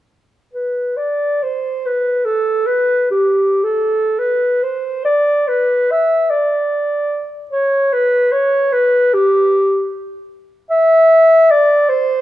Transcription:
0.53 0.98 B4 soft
0.97 1.45 D5 medium
1.43 1.88 C5 medium
1.86 2.27 B4 medium
2.25 2.68 A4 medium
2.67 3.10 B4 medium
3.11 3.65 G4 medium
3.64 4.20 A4 soft
4.19 4.65 B4 medium
4.63 5.04 C5 medium
5.05 5.49 D5 medium
5.48 5.93 B4 medium
5.91 6.32 E5 medium
6.30 7.34 D5 soft
7.51 7.94 C#5 medium
7.93 8.33 B4 medium
8.32 8.74 C#5 medium
8.72 9.15 B4 medium
9.14 9.92 G4 medium
10.70 11.53 E5 medium
11.51 11.91 D5 medium
11.89 12.21 C5 medium

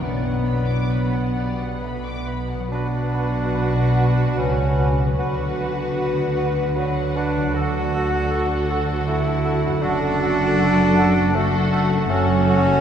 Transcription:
0.00 2.46 B1 soft
0.00 2.53 B2 soft
0.00 2.47 B2 soft
0.00 0.84 F#3 soft
0.00 2.58 F#3 soft
0.00 2.62 B3 soft
0.00 1.78 B3 soft
0.00 2.46 B3 soft
0.00 3.88 D4 soft
0.00 2.33 B4 soft
0.00 0.23 D5 soft
0.00 2.33 D5 soft
0.00 2.50 F#5 soft
0.23 0.47 F#5 soft
0.46 0.69 B5 soft
0.69 0.92 D6 soft
0.92 1.39 F#3 soft
0.92 1.15 B5 soft
1.15 1.38 F#5 soft
1.37 1.84 G3 soft
1.37 1.60 D5 soft
1.62 1.83 F#5 soft
1.82 2.27 A3 soft
1.82 2.05 B5 soft
2.07 2.28 D6 soft
2.28 2.68 B3 soft
2.28 2.50 B5 soft
2.51 5.13 B2 soft
2.51 2.72 F#5 soft
2.59 5.05 F#3 soft
2.64 5.09 B3 soft
2.68 4.32 B1 medium
2.68 4.33 B2 medium
2.68 4.39 D4 medium
2.68 5.14 F#4 soft
2.68 5.13 F#4 medium
2.68 2.87 F#4 soft
2.68 7.51 F#4 soft
2.68 7.51 B4 soft
2.68 5.14 B4 medium
2.68 5.13 F#5 medium
2.72 2.88 B4 soft
2.72 2.83 F#5 soft
3.12 3.28 F#4 soft
3.12 3.30 B4 soft
3.12 3.22 F#5 soft
3.53 3.69 F#4 soft
3.53 3.71 B4 soft
3.53 3.63 F#5 soft
3.95 4.12 F#4 soft
3.95 4.14 B4 soft
3.95 4.04 F#5 soft
4.36 5.18 C#2 soft
4.36 5.18 C#3 soft
4.36 5.02 C#4 medium
4.36 4.54 F#4 soft
4.36 4.52 B4 soft
4.36 4.45 F#5 soft
4.77 4.95 F#4 soft
4.77 4.94 B4 soft
4.77 4.86 F#5 soft
5.01 7.35 D3 soft
5.06 7.40 F#3 soft
5.10 7.54 B3 soft
5.15 7.51 D2 medium
5.15 7.50 D3 medium
5.15 6.77 B3 medium
5.15 7.49 F#4 soft
5.15 6.72 F#4 medium
5.15 5.34 F#4 soft
5.15 6.73 B4 medium
5.15 5.26 F#5 soft
5.15 6.72 F#5 medium
5.19 5.35 B4 medium
5.57 5.73 F#4 soft
5.57 5.75 B4 soft
5.57 5.66 F#5 soft
5.95 6.11 F#4 soft
5.95 6.15 B4 soft
5.95 6.05 F#5 soft
6.36 6.52 F#4 soft
6.36 6.54 B4 soft
6.36 6.46 F#5 soft
6.75 7.18 F#3 medium
6.75 7.53 F#4 medium
6.75 6.91 F#4 soft
6.75 7.53 B4 medium
6.75 6.95 B4 soft
6.75 6.85 F#5 soft
6.75 7.53 F#5 medium
7.14 7.53 D4 medium
7.14 7.30 F#4 soft
7.14 7.33 B4 soft
7.14 7.24 F#5 soft
7.37 9.78 D3 soft
7.41 9.69 F#3 soft
7.46 9.74 A3 soft
7.50 9.79 D2 medium
7.50 9.78 F#4 soft
7.50 11.92 F#4 medium
7.50 9.80 F#4 medium
7.50 8.79 F#4 medium
7.50 9.81 A4 medium
7.50 11.92 A4 medium
7.50 7.62 F#5 medium
7.54 9.80 D3 medium
7.54 7.70 F#4 medium
7.54 7.71 A4 medium
7.54 9.80 F#5 medium
7.94 8.10 F#4 soft
7.94 8.10 A4 soft
7.94 8.03 F#5 medium
8.30 8.48 F#4 medium
8.30 8.46 A4 medium
8.30 8.40 F#5 medium
8.70 8.86 F#4 soft
8.70 8.86 A4 medium
8.70 8.79 F#5 soft
9.07 9.83 E4 medium
9.07 9.24 F#4 medium
9.07 9.24 A4 soft
9.07 9.16 F#5 soft
9.45 9.62 F#4 soft
9.45 9.61 A4 medium
9.45 9.53 F#5 soft
9.65 11.92 F#2 medium
9.70 11.96 F#3 soft
9.75 12.01 A3 soft
9.79 12.09 F#1 medium
9.79 11.36 D4 loud
9.79 12.06 F#4 soft
9.79 11.33 F#4 medium
9.79 11.33 A4 medium
9.83 12.09 F#2 medium
9.83 10.00 F#4 medium
9.83 9.99 A4 medium
9.83 9.92 F#5 medium
9.83 11.33 F#5 medium
10.21 10.39 F#4 medium
10.21 10.37 A4 medium
10.21 10.29 F#5 medium
10.58 10.76 F#4 medium
10.58 10.75 A4 medium
10.58 10.67 F#5 medium
10.97 11.15 F#4 medium
10.97 11.14 A4 medium
10.97 11.06 F#5 medium
11.34 11.72 A3 medium
11.34 12.09 F#4 medium
11.34 11.53 F#4 medium
11.34 12.09 A4 medium
11.34 11.51 A4 medium
11.34 12.08 F#5 medium
11.34 11.44 F#5 medium
11.72 12.11 A3 medium
11.72 11.90 F#4 medium
11.72 11.89 A4 medium
11.72 11.82 F#5 medium
11.93 12.81 F#2 medium
11.97 12.81 F#3 medium
12.02 12.81 A3 medium
12.07 12.81 F#1 medium
12.07 12.81 F#2 medium
12.07 12.81 C#4 loud
12.07 12.81 F#4 medium
12.07 12.81 A4 medium
12.07 12.25 A4 medium
12.07 12.81 A4 medium
12.07 12.81 F#5 medium
12.11 12.28 F#4 medium
12.11 12.20 F#5 medium
12.48 12.65 F#4 medium
12.48 12.64 A4 medium
12.48 12.58 F#5 medium

